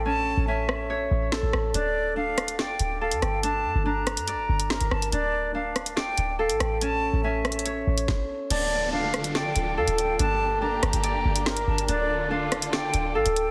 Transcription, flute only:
X:1
M:4/4
L:1/8
Q:1/4=142
K:Dm
V:1 name="Flute"
a2 e4 z2 | d2 f2 g2 f g | a2 b4- b a | d2 f2 g2 f g |
a2 e4 z2 | d2 f2 g2 f g | a2 b4- b a | d2 f2 g2 f g |]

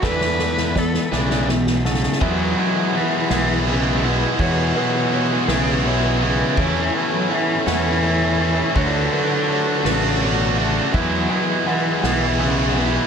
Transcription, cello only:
X:1
M:6/8
L:1/16
Q:3/8=55
K:Emix
V:1 name="Cello" clef=bass
B4 A2 C,2 B,,2 C,2 | F,4 E,2 E,2 C,2 B,,2 | B,,6 C,2 B,,2 C,2- | C, E,2 F, E,2 E,6 |
D,6 C,2 B,,2 C,2 | F,4 E,2 E,2 C,2 B,,2 |]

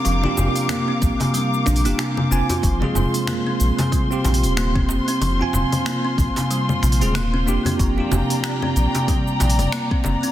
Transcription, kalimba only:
X:1
M:4/4
L:1/16
Q:"Swing 16ths" 1/4=93
K:Fdor
V:1 name="Kalimba" clef=bass
F, z C, z B, C2 C, G, z D B, C, C, z F | F, z C, z B, C2 C, G, z C,2 B, C2 C | F, z C, z B, C2 C, G, z C,2 B, C2 C | F, z C, z B, C2 C, G, z C,2 B, C2 C |]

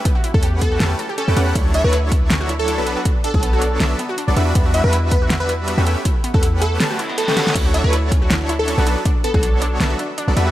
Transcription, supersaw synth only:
X:1
M:4/4
L:1/16
Q:"Swing 16ths" 1/4=160
K:Bm
V:1 name="Supersaw synth"
z3 [A,CGBf]4- [A,CGBf] [A,CGBa]2 z3 [A,CGBg] [A,CGBf]2 | [F,DEAc]3 [F,DEAc]8- [F,DEAc]2 [F,B,DAB]2 z | z3 [F,B,DAc]4- [F,B,DAc] [F,B,DAe]2 z3 [F,B,DAd] [G,DFBe]2 | [G,DFBe]3 [G,DFBe]8- [G,DFBe]2 [A,CGBe]2 z |
z3 [A,CGBf]4- [A,CGBf] [A,CGBa]2 z3 [A,CGBg] [A,CGBf]2 | [F,DEAc]3 [F,DEAc]8- [F,DEAc]2 [F,B,DAB]2 z | z3 [F,B,DAc]4- [F,B,DAc] [F,B,DAe]2 z3 [F,B,DAd] [G,DFBe]2 |]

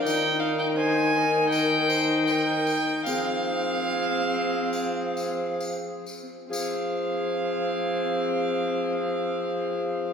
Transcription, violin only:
X:1
M:4/4
L:1/16
Q:1/4=70
K:Fm
V:1 name="Violin"
g2 f g a4 g4 g4 | f12 z4 | f16 |]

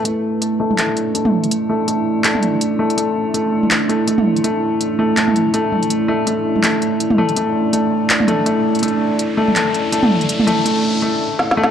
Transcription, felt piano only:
X:1
M:4/4
L:1/8
Q:"Swing 16ths" 1/4=164
K:Clyd
V:1 name="Felt piano"
A,3 A, A,2 A,2- | A, A, A,2 A,3 A, | A,2 A,3 A, A,2 | A,3 A, A, z A, z |
z A, A,2 A,3 A, | A,2 A,3 A, A,2 | A,3 A, A,2 A,2- | A, A, A,2 A, z2 A, |]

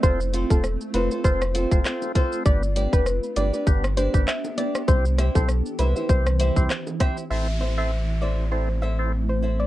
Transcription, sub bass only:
X:1
M:4/4
L:1/16
Q:"Swing 16ths" 1/4=99
K:Am
V:1 name="Sub bass" clef=bass
F,,,3 E,,,2 z F,,, z F,,,3 F,,, z4 | G,,,3 F,,,2 z G,,, z G,,,3 G,,, z4 | C,,3 B,,,2 z C,, z C,,3 C,, z4 | A,,,16 |]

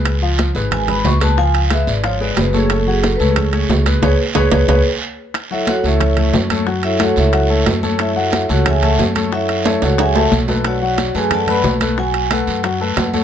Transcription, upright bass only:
X:1
M:4/4
L:1/8
Q:1/4=181
K:F#m
V:1 name="Upright bass" clef=bass
C,,3 G,,,3 C,,2- | C,,3 G,,,3 F,,,2- | F,,,3 C,,3 C,,2 | C,, z C,, C,, C,, z3 |
z3 C,,3 F,,2- | F,,3 C,,3 F,,2- | F,,3 C,,3 F,,2- | F,,3 C,,3 B,,,2- |
B,,,3 F,,3 B,,,2- | B,,,3 F,,3 F,,2 |]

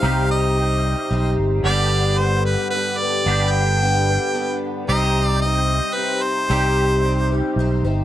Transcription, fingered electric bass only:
X:1
M:3/4
L:1/8
Q:1/4=112
K:Cm
V:1 name="Fingered electric bass" clef=bass
C,,4 =B,,, G,,, | G,,,4 z2 | G,,,4 z2 | C,,4 z2 |
C,,4 =B,,, G,,, |]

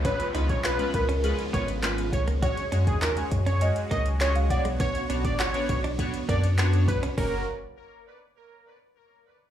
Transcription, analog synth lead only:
X:1
M:4/4
L:1/16
Q:1/4=101
K:F#
V:1 name="Analog synth lead"
B2 z c B2 B z3 c z3 c z | c2 z G A z2 c2 z d z c z =d z | c2 z =d c2 c z3 d z3 B z | A2 z12 z2 |]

